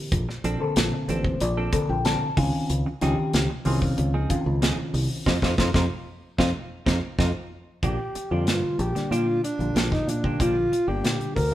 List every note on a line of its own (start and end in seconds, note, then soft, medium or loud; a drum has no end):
0.12 0.26 A#1 medium
0.12 kick loud
0.12 closed hi-hat medium
0.29 muted clean electric guitar stroke soft
0.29 snare soft
0.44 0.58 A#1 medium
0.44 0.60 F3 medium
0.44 0.60 C4 medium
0.44 0.60 D4 medium
0.44 0.60 A4 medium
0.44 closed hi-hat medium
0.60 1.42 D3 medium
0.60 1.42 A#3 medium
0.60 1.42 C4 medium
0.60 1.42 A4 medium
0.60 muted fingered electric bass stroke soft
0.60 muted clean electric guitar stroke soft
0.76 0.90 A#1 medium
0.76 muted clean electric guitar stroke soft
0.76 snare loud
0.76 closed hi-hat medium
0.93 muted clean electric guitar stroke soft
1.08 1.36 A1 medium
1.08 1.24 F3 medium
1.08 1.24 C4 medium
1.08 1.24 D4 medium
1.08 1.23 A4 medium
1.08 1.38 C5 medium
1.08 closed hi-hat medium
1.24 muted clean electric guitar stroke soft
1.24 kick medium
1.40 1.68 A#1 medium
1.40 1.71 D5 medium
1.40 muted clean electric guitar stroke soft
1.40 closed hi-hat medium
1.57 1.77 F3 medium
1.57 1.77 C4 medium
1.57 1.76 D4 medium
1.57 1.76 A4 medium
1.72 1.96 D3 medium
1.72 1.96 A#3 medium
1.72 1.96 C4 medium
1.72 1.96 A4 medium
1.72 1.88 D5 medium
1.72 kick medium
1.72 closed hi-hat medium
1.89 2.16 A#1 medium
1.89 2.04 G5 medium
2.05 2.28 D3 medium
2.05 2.21 F3 medium
2.05 2.28 A#3 medium
2.05 2.28 C4 medium
2.05 2.21 C4 medium
2.05 2.20 D4 medium
2.05 2.28 A4 medium
2.05 2.20 A4 medium
2.05 2.35 A5 medium
2.05 snare medium
2.05 closed hi-hat medium
2.21 muted clean electric guitar stroke soft
2.21 muted fingered electric bass stroke soft
2.37 2.51 C#2 medium
2.37 2.88 D#3 medium
2.37 2.89 C4 medium
2.37 2.89 C#4 medium
2.37 2.89 F4 medium
2.37 2.67 G#5 medium
2.37 muted clean electric guitar stroke soft
2.37 kick loud
2.37 open hi-hat medium
2.70 2.83 C#2 medium
2.70 closed hi-hat medium
2.86 muted clean electric guitar stroke soft
3.01 3.16 C#2 medium
3.01 3.48 D#3 medium
3.01 3.18 F3 medium
3.01 3.48 C4 medium
3.01 3.17 C4 medium
3.01 3.48 C#4 medium
3.01 3.17 D#4 medium
3.01 3.49 G4 medium
3.01 3.17 G#4 medium
3.01 snare soft
3.01 closed hi-hat medium
3.18 muted clean electric guitar stroke soft
3.33 3.47 C#2 medium
3.33 muted clean electric guitar stroke soft
3.33 snare loud
3.33 closed hi-hat medium
3.50 muted clean electric guitar stroke soft
3.65 3.93 C2 medium
3.65 4.12 D#3 medium
3.65 3.82 F3 medium
3.65 4.12 C4 medium
3.65 3.81 C4 medium
3.65 4.12 C#4 medium
3.65 3.81 D#4 medium
3.65 4.12 F4 loud
3.65 3.80 G#4 medium
3.65 open hi-hat medium
3.81 muted clean electric guitar stroke soft
3.81 kick medium
3.98 4.25 C#2 loud
3.98 muted clean electric guitar stroke soft
3.98 closed hi-hat medium
4.14 4.34 F3 soft
4.14 4.34 C4 medium
4.14 4.33 D#4 medium
4.14 4.33 G#4 medium
4.29 5.23 D#3 medium
4.29 5.23 C4 medium
4.29 5.23 C#4 medium
4.29 5.23 F4 medium
4.29 kick medium
4.29 closed hi-hat medium
4.46 4.73 C#2 medium
4.62 4.78 F3 medium
4.62 4.78 C4 medium
4.62 4.78 D#4 medium
4.62 4.78 G#4 medium
4.62 snare loud
4.62 closed hi-hat medium
4.78 muted fingered electric bass stroke soft
4.78 muted clean electric guitar stroke soft
4.94 5.07 C2 medium
4.94 muted clean electric guitar stroke soft
4.94 open hi-hat medium
5.26 5.38 F2 medium
5.26 5.37 C4 medium
5.26 5.37 D#4 medium
5.26 5.37 F4 medium
5.26 kick medium
5.26 snare medium
5.42 5.54 F2 medium
5.42 5.53 C4 medium
5.42 5.53 D#4 medium
5.42 5.53 F4 medium
5.42 kick medium
5.42 snare medium
5.58 5.70 F2 medium
5.58 5.69 C4 medium
5.58 5.69 D#4 medium
5.58 5.69 F4 medium
5.58 kick medium
5.58 snare medium
5.74 5.86 F2 medium
5.74 5.85 C4 medium
5.74 5.85 D#4 medium
5.74 5.85 F4 medium
5.74 kick medium
5.74 snare medium
6.38 6.51 F2 medium
6.38 6.49 C4 medium
6.38 6.49 D#4 medium
6.38 6.49 F4 medium
6.38 kick medium
6.38 snare medium
6.86 6.99 F2 medium
6.86 6.96 C4 medium
6.86 6.97 C4 medium
6.86 6.97 D#4 medium
6.86 6.97 F4 medium
6.86 kick medium
6.86 snare medium
7.18 7.31 F2 medium
7.18 7.29 C4 medium
7.18 7.29 D#4 medium
7.18 7.29 F4 medium
7.18 kick medium
7.18 snare medium
7.83 7.96 A#1 medium
7.83 7.99 F3 medium
7.83 7.99 A#3 medium
7.83 7.98 D4 medium
7.83 7.98 G4 medium
7.83 8.33 G4 medium
7.83 kick medium
7.83 closed hi-hat medium
7.99 muted clean electric guitar stroke soft
8.15 muted clean electric guitar stroke soft
8.15 muted fingered electric bass stroke soft
8.15 closed hi-hat medium
8.31 8.47 F2 medium
8.31 8.78 D3 medium
8.31 8.78 G3 medium
8.31 8.78 A#3 medium
8.31 8.46 A#3 soft
8.31 8.46 D4 soft
8.31 8.78 F4 medium
8.31 8.80 F4 medium
8.31 8.47 G4 soft
8.47 8.61 G2 medium
8.47 muted clean electric guitar stroke soft
8.47 snare medium
8.47 closed hi-hat medium
8.63 muted fingered electric bass stroke soft
8.79 8.93 A#1 medium
8.79 9.13 G4 medium
8.79 closed hi-hat medium
8.95 9.42 D3 medium
8.95 9.42 G3 medium
8.95 9.42 A#3 medium
8.95 9.42 D4 medium
8.95 muted clean electric guitar stroke soft
8.95 snare soft
8.95 closed hi-hat soft
9.11 9.38 A#2 medium
9.11 9.28 F3 medium
9.11 9.27 A#3 medium
9.11 9.27 D4 medium
9.11 9.43 F4 medium
9.11 9.27 G4 medium
9.11 closed hi-hat medium
9.28 muted clean electric guitar stroke soft
9.44 9.94 D4 medium
9.44 muted clean electric guitar stroke soft
9.44 closed hi-hat medium
9.59 9.73 A#1 medium
9.59 10.06 D3 medium
9.59 10.06 G3 medium
9.59 10.06 A#3 medium
9.59 10.07 F4 medium
9.59 closed hi-hat soft
9.75 10.02 A#1 medium
9.75 9.92 F3 soft
9.75 9.92 A#3 medium
9.75 9.92 D4 soft
9.75 9.92 G4 soft
9.75 snare medium
9.75 closed hi-hat medium
9.92 10.11 D#4 medium
9.92 muted clean electric guitar stroke soft
9.92 kick medium
9.92 snare soft
10.07 10.35 A#2 medium
10.07 10.43 D4 medium
10.07 muted clean electric guitar stroke soft
10.07 closed hi-hat medium
10.23 10.70 D3 medium
10.23 10.70 G3 medium
10.23 10.70 A#3 medium
10.23 10.40 A#3 soft
10.23 10.40 D4 soft
10.23 10.71 F4 medium
10.23 10.40 G4 soft
10.23 kick medium
10.40 10.67 A#1 medium
10.40 10.57 F3 medium
10.40 10.56 A#3 medium
10.40 10.56 D4 medium
10.40 10.90 F4 medium
10.40 10.56 G4 medium
10.40 kick medium
10.40 closed hi-hat medium
10.57 muted clean electric guitar stroke soft
10.72 muted clean electric guitar stroke soft
10.72 muted fingered electric bass stroke soft
10.72 closed hi-hat medium
10.87 11.01 G1 medium
10.87 11.34 D3 medium
10.87 11.35 G3 medium
10.87 11.35 A#3 medium
10.87 11.03 A#3 soft
10.87 11.35 D4 medium
10.87 11.04 D4 soft
10.87 11.03 G4 soft
10.87 11.35 G4 medium
11.04 11.18 A#2 medium
11.04 muted clean electric guitar stroke soft
11.04 snare medium
11.04 closed hi-hat medium
11.19 muted fingered electric bass stroke soft
11.19 closed hi-hat soft
11.36 11.54 D2 medium
11.36 11.54 A#4 medium
11.36 kick medium
11.36 open hi-hat medium